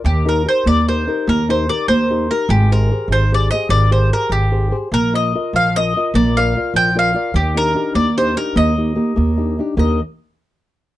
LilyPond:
<<
  \new Staff \with { instrumentName = "Mandolin" } { \time 6/8 \key ees \major \tempo 4. = 99 g'8 bes'8 c''8 d''8 c''4 | bes'8 c''8 d''8 c''4 bes'8 | g'8 bes'4 c''8 d''8 ees''8 | d''8 c''8 bes'8 g'4 r8 |
bes'8 ees''4 f''8 ees''4 | d''8 f''4 g''8 f''4 | g'8 bes'4 d''8 c''8 bes'8 | ees''2~ ees''8 r8 |
ees''8 r2 r8 | }
  \new Staff \with { instrumentName = "Nylon-string guitar" } { \time 6/8 \key ees \major ees8 <ees' g' bes'>8 <ees' g' bes'>8 bes8 <ees' g' bes'>8 <ees' g' bes'>8 | bes8 <ees' g' bes'>8 <ees' g' bes'>8 bes8 <ees' g' bes'>8 <ees' g' bes'>8 | aes8 <g' aes' c''>8 <g' aes' c''>8 ees8 <g' aes' c''>8 <g' aes' c''>8 | ees8 <g' aes' c''>8 <g' aes' c''>8 ees8 <g' aes' c''>8 <g' aes' c''>8 |
bes8 <f' bes' ees''>8 <f' bes' ees''>8 f8 <f' bes' ees''>8 <f' bes' ees''>8 | bes8 <f' bes' d''>8 <f' bes' d''>8 f8 <f' bes' d''>8 <f' bes' d''>8 | ees8 <d' ees' g'>8 <d' ees' g'>8 bes8 <d' ees' g'>8 <d' ees' g'>8 | bes8 <bes ees' g'>8 <bes ees' g'>8 bes8 <d' ees' g'>8 <d' ees' g'>8 |
<ees bes d' g' bes'>8 r2 r8 | }
  \new Staff \with { instrumentName = "Upright bass" } { \clef bass \time 6/8 \key ees \major ees,4. ees,4. | ees,4. ees,4. | aes,,4. aes,,4. | aes,,4. aes,,4. |
bes,,4. bes,,4. | bes,,4. bes,,4. | ees,4. ees,4. | ees,4. ees,4. |
ees,8 r2 r8 | }
>>